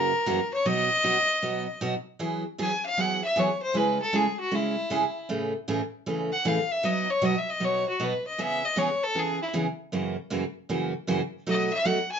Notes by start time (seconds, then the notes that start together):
Already playing: F#2 C#3 E3 A#3 C#4 F#4 A#4
0.26 F#2 C#3 E3 A#3 C#4 F#4
0.54 C#5
0.65 B2 F#3 B3 D#4 F#4 D#5
1.04 B2 F#3 B3 D#4 F#4
1.42 B2 F#3 B3 D#4 F#4
1.81 B2 F#3 B3 D#4 F#4
2.19 E3 F#3 B3 E4 G#4
2.58 E3 F#3 B3 E4 G#4 G#5
2.86 F5
2.97 E3 F#3 B3 E4 G#4 F#5
3.24 E5
3.36 E3 F#3 B3 E4 G#4 C#5
3.62 C5
3.74 C#3 G#3 C#4 E4 G#4 B4
4.01 A4
4.13 C#3 G#3 C#4 E4 G#4
4.40 F#4
4.51 C#3 G#3 C#4 E4 G#4
4.90 C#3 G#3 C#4 E4 G#4
5.29 A2 C#3 E3 A3 C#4 G#4
5.68 A2 C#3 E3 A3 C#4 G#4
6.06 A2 C#3 E3 A3 C#4 G#4
6.32 F#5
6.45 A2 C#3 E3 A3 C#4 G#4 F5
6.71 E5
6.83 B2 F#3 B3 D#4 F#4 D#5
7.10 C#5
7.22 B2 F#3 B3 D#4 F#4 D#5
7.38 E5
7.50 D#5
7.60 B2 F#3 B3 D#4 F#4
7.64 C#5
7.88 F#4
8.00 B2 F#3 B3 D#4 F#4 B4
8.27 D#5
8.38 C#3 E3 B3 C#4 G#4 E5
8.65 D#5
8.76 C#3 E3 B3 C#4 G#4 C#5
9.03 A4
9.15 C#3 E3 B3 C#4 G#4
9.42 E4
9.53 C#3 E3 B3 C#4 G#4
9.92 F#2 C#3 E3 A#3 C#4 F#4
10.30 F#2 C#3 E3 A#3 C#4 F#4
10.69 F#2 C#3 E3 A#3 C#4 F#4
11.07 F#2 C#3 E3 A#3 C#4 F#4
11.47 B2 F#3 A3 D#4 F#4 D#5
11.73 E5
11.85 B2 F#3 A3 D#4 F#4 F#5
12.11 G#5